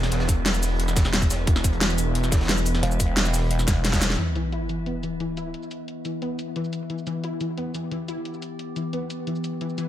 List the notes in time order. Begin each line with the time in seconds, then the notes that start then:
Already playing: E1 E3 B3 E4
0.03 snare, closed hi-hat
0.11 E1, snare, closed hi-hat
0.20 snare, closed hi-hat
0.29 kick, closed hi-hat, shaker
0.46 snare, closed hi-hat
0.54 snare, shaker
0.63 snare, open hi-hat, shaker
0.80 closed hi-hat
0.88 snare, shaker
0.96 kick, snare, closed hi-hat, shaker
1.05 snare, closed hi-hat
1.14 snare, closed hi-hat
1.22 kick, snare, shaker
1.30 snare, closed hi-hat, open hi-hat, shaker
1.39 snare
1.47 E1, kick, closed hi-hat
1.55 snare
1.64 kick, closed hi-hat, shaker
1.73 closed hi-hat
1.81 snare, closed hi-hat
1.89 snare, shaker
1.98 closed hi-hat, open hi-hat, shaker
2.15 closed hi-hat
2.24 snare, shaker
2.32 kick, snare, closed hi-hat, shaker
2.41 snare, closed hi-hat
2.45 snare, closed hi-hat
2.49 snare, closed hi-hat
2.58 shaker
2.65 closed hi-hat, open hi-hat, shaker
2.74 snare
2.83 E1, closed hi-hat
2.91 shaker
3.00 kick, closed hi-hat, shaker
3.17 snare, closed hi-hat
3.25 snare, shaker
3.33 snare, open hi-hat, shaker
3.51 closed hi-hat
3.59 snare, shaker
3.67 kick, snare, closed hi-hat, shaker
3.84 snare, closed hi-hat
3.88 snare, closed hi-hat
3.93 kick, snare, closed hi-hat, shaker
3.98 snare, closed hi-hat
4.01 snare, closed hi-hat, open hi-hat, shaker
4.09 snare, closed hi-hat
4.14 snare, closed hi-hat
4.18 E3 B3 E4, closed hi-hat, sub drop
4.27 shaker
4.35 E3, closed hi-hat, shaker
4.52 E4, closed hi-hat
4.69 E3, closed hi-hat, shaker
4.86 B3, closed hi-hat
5.03 E3, closed hi-hat, shaker
5.20 E3, closed hi-hat
5.37 E4, closed hi-hat, shaker
5.54 closed hi-hat
5.63 shaker
5.71 closed hi-hat, shaker
5.88 closed hi-hat
6.05 E3, closed hi-hat, shaker
6.22 B3, closed hi-hat
6.39 closed hi-hat, shaker
6.56 E3, closed hi-hat
6.64 shaker
6.73 closed hi-hat, shaker
6.90 E3 G4, closed hi-hat
6.98 shaker
7.07 E3, closed hi-hat, shaker
7.24 E4, closed hi-hat
7.41 E3, closed hi-hat, shaker
7.57 B3, closed hi-hat
7.74 E3, closed hi-hat, shaker
7.91 E3, closed hi-hat
8.08 E4, closed hi-hat, shaker
8.25 closed hi-hat
8.34 shaker
8.42 closed hi-hat, shaker
8.59 closed hi-hat
8.76 E3, closed hi-hat, shaker
8.93 B3, closed hi-hat
9.10 closed hi-hat, shaker
9.27 E3, closed hi-hat
9.36 shaker
9.44 closed hi-hat, shaker
9.61 E3 E4, closed hi-hat
9.69 shaker
9.78 E3, closed hi-hat, shaker